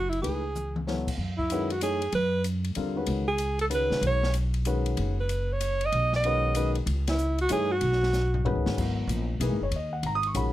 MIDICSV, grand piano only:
0, 0, Header, 1, 2, 480
1, 0, Start_track
1, 0, Tempo, 316122
1, 357, Time_signature, 3, 2, 24, 8
1, 15984, End_track
2, 0, Start_track
2, 0, Title_t, "Grand piano"
2, 0, Program_c, 0, 0
2, 343, Note_on_c, 0, 52, 50
2, 345, Note_on_c, 0, 57, 44
2, 346, Note_on_c, 0, 63, 43
2, 353, Note_on_c, 0, 71, 57
2, 357, Note_on_c, 0, 68, 46
2, 626, Note_off_c, 0, 52, 0
2, 627, Note_off_c, 0, 57, 0
2, 628, Note_off_c, 0, 63, 0
2, 631, Note_off_c, 0, 71, 0
2, 633, Note_off_c, 0, 68, 0
2, 1317, Note_on_c, 0, 59, 51
2, 1325, Note_on_c, 0, 64, 54
2, 1326, Note_on_c, 0, 73, 59
2, 1328, Note_on_c, 0, 54, 53
2, 1329, Note_on_c, 0, 69, 51
2, 1593, Note_off_c, 0, 59, 0
2, 1597, Note_off_c, 0, 64, 0
2, 1598, Note_off_c, 0, 54, 0
2, 1598, Note_off_c, 0, 73, 0
2, 1599, Note_off_c, 0, 69, 0
2, 2299, Note_on_c, 0, 56, 57
2, 2301, Note_on_c, 0, 51, 65
2, 2307, Note_on_c, 0, 61, 57
2, 2307, Note_on_c, 0, 66, 57
2, 2314, Note_on_c, 0, 71, 64
2, 2564, Note_off_c, 0, 56, 0
2, 2565, Note_off_c, 0, 51, 0
2, 2568, Note_off_c, 0, 61, 0
2, 2568, Note_off_c, 0, 66, 0
2, 2571, Note_off_c, 0, 71, 0
2, 2765, Note_on_c, 0, 52, 50
2, 2765, Note_on_c, 0, 57, 54
2, 2770, Note_on_c, 0, 73, 67
2, 2772, Note_on_c, 0, 63, 50
2, 2777, Note_on_c, 0, 68, 54
2, 3037, Note_off_c, 0, 52, 0
2, 3037, Note_off_c, 0, 57, 0
2, 3039, Note_off_c, 0, 73, 0
2, 3040, Note_off_c, 0, 63, 0
2, 3043, Note_off_c, 0, 68, 0
2, 4190, Note_on_c, 0, 55, 59
2, 4191, Note_on_c, 0, 50, 60
2, 4198, Note_on_c, 0, 60, 53
2, 4199, Note_on_c, 0, 65, 53
2, 4200, Note_on_c, 0, 70, 67
2, 4469, Note_off_c, 0, 50, 0
2, 4469, Note_off_c, 0, 55, 0
2, 4473, Note_off_c, 0, 60, 0
2, 4473, Note_off_c, 0, 65, 0
2, 4474, Note_off_c, 0, 70, 0
2, 4495, Note_on_c, 0, 51, 62
2, 4504, Note_on_c, 0, 56, 56
2, 4507, Note_on_c, 0, 66, 61
2, 4509, Note_on_c, 0, 61, 51
2, 4511, Note_on_c, 0, 71, 66
2, 4917, Note_off_c, 0, 51, 0
2, 4922, Note_off_c, 0, 56, 0
2, 4923, Note_off_c, 0, 66, 0
2, 4924, Note_off_c, 0, 61, 0
2, 4925, Note_off_c, 0, 71, 0
2, 5616, Note_on_c, 0, 61, 52
2, 5618, Note_on_c, 0, 51, 55
2, 5620, Note_on_c, 0, 66, 49
2, 5622, Note_on_c, 0, 71, 70
2, 5623, Note_on_c, 0, 56, 52
2, 6350, Note_off_c, 0, 61, 0
2, 6352, Note_off_c, 0, 51, 0
2, 6353, Note_off_c, 0, 66, 0
2, 6353, Note_off_c, 0, 71, 0
2, 6354, Note_off_c, 0, 56, 0
2, 7076, Note_on_c, 0, 56, 62
2, 7078, Note_on_c, 0, 51, 59
2, 7089, Note_on_c, 0, 61, 58
2, 7090, Note_on_c, 0, 66, 60
2, 7091, Note_on_c, 0, 71, 73
2, 7800, Note_off_c, 0, 56, 0
2, 7801, Note_off_c, 0, 51, 0
2, 7807, Note_off_c, 0, 61, 0
2, 7807, Note_off_c, 0, 66, 0
2, 7808, Note_off_c, 0, 71, 0
2, 9490, Note_on_c, 0, 51, 63
2, 9494, Note_on_c, 0, 56, 54
2, 9498, Note_on_c, 0, 61, 61
2, 9502, Note_on_c, 0, 71, 69
2, 9507, Note_on_c, 0, 66, 56
2, 9940, Note_off_c, 0, 51, 0
2, 9941, Note_off_c, 0, 61, 0
2, 9943, Note_off_c, 0, 56, 0
2, 9945, Note_off_c, 0, 71, 0
2, 9947, Note_off_c, 0, 66, 0
2, 9963, Note_on_c, 0, 51, 64
2, 9964, Note_on_c, 0, 61, 58
2, 9966, Note_on_c, 0, 56, 55
2, 9967, Note_on_c, 0, 71, 71
2, 9969, Note_on_c, 0, 66, 52
2, 10234, Note_off_c, 0, 51, 0
2, 10234, Note_off_c, 0, 61, 0
2, 10236, Note_off_c, 0, 56, 0
2, 10236, Note_off_c, 0, 71, 0
2, 10237, Note_off_c, 0, 66, 0
2, 11395, Note_on_c, 0, 57, 65
2, 11397, Note_on_c, 0, 52, 74
2, 11403, Note_on_c, 0, 63, 60
2, 11407, Note_on_c, 0, 73, 72
2, 11414, Note_on_c, 0, 68, 66
2, 11669, Note_off_c, 0, 57, 0
2, 11670, Note_off_c, 0, 52, 0
2, 11673, Note_off_c, 0, 63, 0
2, 11676, Note_off_c, 0, 73, 0
2, 11679, Note_off_c, 0, 68, 0
2, 12829, Note_on_c, 0, 51, 67
2, 12830, Note_on_c, 0, 56, 64
2, 12831, Note_on_c, 0, 61, 61
2, 12832, Note_on_c, 0, 66, 62
2, 12846, Note_on_c, 0, 71, 78
2, 13310, Note_off_c, 0, 51, 0
2, 13311, Note_off_c, 0, 56, 0
2, 13312, Note_off_c, 0, 61, 0
2, 13312, Note_off_c, 0, 66, 0
2, 13316, Note_on_c, 0, 59, 55
2, 13319, Note_off_c, 0, 71, 0
2, 13319, Note_on_c, 0, 54, 54
2, 13319, Note_on_c, 0, 64, 45
2, 13320, Note_on_c, 0, 70, 59
2, 14039, Note_off_c, 0, 59, 0
2, 14041, Note_off_c, 0, 54, 0
2, 14041, Note_off_c, 0, 64, 0
2, 14041, Note_off_c, 0, 70, 0
2, 14285, Note_on_c, 0, 63, 54
2, 14288, Note_on_c, 0, 52, 61
2, 14289, Note_on_c, 0, 58, 59
2, 14292, Note_on_c, 0, 68, 71
2, 14314, Note_on_c, 0, 71, 66
2, 14555, Note_off_c, 0, 63, 0
2, 14556, Note_off_c, 0, 52, 0
2, 14557, Note_off_c, 0, 58, 0
2, 14558, Note_off_c, 0, 68, 0
2, 14591, Note_off_c, 0, 71, 0
2, 14624, Note_on_c, 0, 73, 75
2, 14771, Note_off_c, 0, 73, 0
2, 14818, Note_on_c, 0, 75, 73
2, 15075, Note_on_c, 0, 78, 67
2, 15084, Note_off_c, 0, 75, 0
2, 15236, Note_off_c, 0, 78, 0
2, 15280, Note_on_c, 0, 82, 88
2, 15412, Note_off_c, 0, 82, 0
2, 15416, Note_on_c, 0, 87, 114
2, 15561, Note_off_c, 0, 87, 0
2, 15592, Note_on_c, 0, 85, 73
2, 15712, Note_on_c, 0, 51, 59
2, 15712, Note_on_c, 0, 56, 54
2, 15714, Note_on_c, 0, 61, 57
2, 15722, Note_on_c, 0, 66, 67
2, 15729, Note_off_c, 0, 85, 0
2, 15742, Note_on_c, 0, 83, 80
2, 15984, Note_off_c, 0, 51, 0
2, 15984, Note_off_c, 0, 56, 0
2, 15984, Note_off_c, 0, 61, 0
2, 15984, Note_off_c, 0, 66, 0
2, 15984, Note_off_c, 0, 83, 0
2, 15984, End_track
0, 0, End_of_file